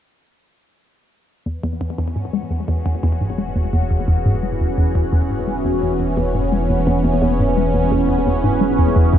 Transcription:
1.46 9.19 E1 medium
1.46 1.59 E2 medium
1.46 9.19 E3 medium
1.46 9.19 B3 medium
1.46 9.19 B4 medium
1.62 1.80 E2 medium
1.62 9.19 B3 medium
1.78 1.94 E2 medium
1.78 9.19 C#4 medium
1.98 2.15 E2 medium
1.98 8.82 F#4 medium
2.16 2.32 G#2 medium
2.33 2.50 G#3 medium
2.51 2.63 E2 medium
2.51 9.19 G#4 medium
2.68 2.85 E2 medium
2.86 2.98 E2 medium
3.03 3.20 E2 medium
3.21 3.37 G#2 medium
3.38 3.55 G#3 medium
3.56 3.68 E2 medium
3.73 3.90 E2 medium
3.91 4.03 E2 medium
4.08 4.24 E2 medium
4.25 4.42 G#2 medium
4.43 4.59 G#3 medium
4.60 4.73 E2 medium
4.78 4.94 E2 medium
4.95 5.08 E2 medium
5.13 5.29 E2 medium
5.30 5.47 G#2 medium
5.48 5.64 G#3 medium
5.65 5.77 E2 medium
5.82 5.99 E2 medium
6.00 6.12 E2 medium
6.17 6.34 E2 medium
6.35 6.51 G#2 medium
6.52 6.69 G#3 medium
6.70 6.82 E2 medium
6.87 7.03 E2 medium
7.04 7.17 E2 medium
7.22 7.38 E2 loud
7.39 7.56 G#2 medium
7.57 7.73 G#3 medium
7.74 7.87 E2 medium
7.92 8.08 E2 medium
8.09 8.21 E2 medium
8.26 8.43 E2 medium
8.44 8.60 G#2 medium
8.61 8.78 G#3 medium
8.61 9.19 E4 medium
8.79 8.91 E2 medium
8.96 9.12 E2 medium
9.13 9.19 E2 medium

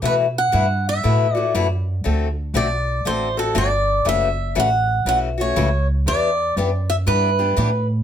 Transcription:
0.02 0.51 B2 medium
0.02 0.25 B2 medium
0.02 0.25 E3 medium
0.02 0.25 A3 medium
0.02 0.25 E4 medium
0.02 0.26 F#4 medium
0.02 0.14 B4 medium
0.38 0.88 F#5 medium
0.52 1.02 G2 medium
0.52 0.65 B2 medium
0.52 0.65 E3 medium
0.52 0.65 A3 medium
0.52 0.65 E4 medium
0.52 0.65 F#4 loud
0.89 1.35 E5 medium
1.03 1.53 A2 medium
1.03 1.26 B2 medium
1.03 1.26 E3 medium
1.03 1.26 A3 medium
1.03 1.26 E4 medium
1.03 1.26 F#4 medium
1.35 1.54 A3 soft
1.35 1.54 E4 medium
1.35 1.53 F#4 medium
1.35 1.52 D5 medium
1.54 2.03 F#2 medium
1.54 1.66 B2 medium
1.54 1.66 E3 medium
1.54 1.66 A3 medium
1.54 1.66 E4 medium
1.54 1.67 F#4 loud
2.04 2.53 D2 medium
2.04 2.26 D3 medium
2.04 2.27 A3 medium
2.04 2.27 C4 medium
2.04 2.27 F#4 medium
2.04 2.27 A4 medium
2.54 3.03 B1 medium
2.54 2.66 D3 medium
2.54 2.66 A3 medium
2.54 2.67 C4 medium
2.54 2.67 F#4 medium
2.54 2.67 A4 medium
2.54 3.07 D5 medium
3.05 3.54 A1 medium
3.05 3.27 D3 medium
3.05 3.27 A3 medium
3.05 3.28 C4 medium
3.05 3.28 F#4 medium
3.05 3.28 A4 medium
3.05 3.36 C5 medium
3.37 3.54 C4 soft
3.37 3.55 F#4 soft
3.37 3.54 A4 medium
3.37 3.57 A4 medium
3.55 4.04 G1 medium
3.55 3.67 D3 medium
3.55 3.67 A3 loud
3.55 3.67 C4 medium
3.55 3.67 F#4 medium
3.55 3.67 A4 loud
3.55 4.08 D5 medium
4.05 4.54 F#1 medium
4.05 4.27 C#3 medium
4.05 4.27 E3 medium
4.05 4.27 A3 medium
4.05 4.28 C#4 medium
4.05 4.28 F#4 medium
4.05 4.54 E5 loud
4.55 5.04 A1 medium
4.55 4.67 C#3 medium
4.55 4.67 E3 medium
4.55 4.67 A3 medium
4.55 4.68 C#4 loud
4.55 4.68 F#4 medium
4.60 5.07 F#5 loud
5.05 5.54 B1 medium
5.05 5.28 C#3 medium
5.05 5.28 E3 medium
5.05 5.28 A3 medium
5.05 5.28 C#4 medium
5.05 5.29 F#4 medium
5.05 5.17 F#5 loud
5.38 5.55 A3 soft
5.38 5.56 C#4 soft
5.38 5.55 F#4 medium
5.38 5.87 C#5 medium
5.56 6.05 C#2 loud
5.56 5.68 C#3 medium
5.56 5.68 E3 medium
5.56 5.68 A3 medium
5.56 5.68 C#4 medium
5.56 5.69 F#4 medium
6.06 6.55 E2 medium
6.06 6.29 E3 medium
6.06 6.29 B3 medium
6.06 6.29 D4 medium
6.06 6.29 G4 medium
6.06 6.54 D5 loud
6.56 7.05 F#2 medium
6.56 6.68 E3 medium
6.56 6.69 B3 medium
6.56 6.69 D4 medium
6.56 6.69 G4 medium
6.90 6.95 E5 loud
7.06 7.55 G2 medium
7.06 7.29 E3 medium
7.06 7.29 B3 medium
7.06 7.29 D4 medium
7.06 7.29 G4 medium
7.06 7.86 B4 medium
7.39 7.56 B3 soft
7.39 7.56 D4 medium
7.39 7.56 G4 medium
7.57 8.03 A2 loud
7.57 7.68 E3 medium
7.57 7.69 B3 medium
7.57 7.69 D4 medium
7.57 7.69 G4 medium

